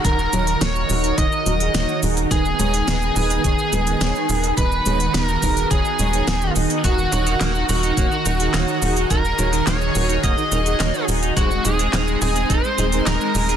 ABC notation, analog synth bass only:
X:1
M:4/4
L:1/8
Q:1/4=106
K:Ebm
V:1 name="Analog synth bass" clef=bass
E,,, E,,, E,,, E,,, E,,, E,,, E,,, E,,, | E,,, E,,, E,,, E,,, E,,, E,,, E,,, E,,, | E,,, E,,, E,,, E,,, E,,, E,,, E,,, E,,, | E,,, E,,, E,,, E,,, E,,, E,,, E,,, E,,, |
E,,, E,,, E,,, E,,, E,,, E,,, E,,, E,,, | E,,, E,,, E,,, E,,, E,,, E,,, E,,, E,,, |]